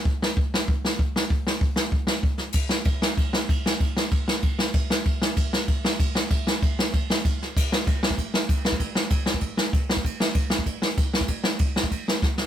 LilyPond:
\new DrumStaff \with { instrumentName = "Drums" } \drummode { \time 4/4 \tempo 4 = 192 <hho bd>8 sn8 <hho bd>8 sn8 <hho bd>8 sn8 <hho bd>8 sn8 | <hho bd>8 sn8 <hho bd>8 sn8 <hho bd>8 sn8 <hho bd>8 sn8 | <cymc bd>8 sn8 <bd cymr>8 sn8 <bd cymr>8 sn8 <bd cymr>8 sn8 | <bd cymr>8 sn8 <bd cymr>8 sn8 <bd cymr>8 sn8 <bd cymr>8 sn8 |
<bd cymr>8 sn8 <bd cymr>8 sn8 <bd cymr>8 sn8 <bd cymr>8 sn8 | <bd cymr>8 sn8 <bd cymr>8 sn8 <bd cymr>8 sn8 <bd cymr>8 sn8 | <cymc bd>8 sn8 <cymc bd>8 sn16 bd16 <cymc bd>8 sn8 <cymc bd>8 sn16 bd16 | <cymc bd>8 sn8 <cymc bd>8 sn16 bd16 <cymc bd>8 sn8 <cymc bd>8 sn16 bd16 |
<cymc bd>8 sn8 <cymc bd>8 sn16 bd16 <cymc bd>8 sn8 <cymc bd>8 sn16 bd16 | <cymc bd>8 sn8 <cymc bd>8 sn16 bd16 <cymc bd>8 sn8 <bd sn>8 sn8 | }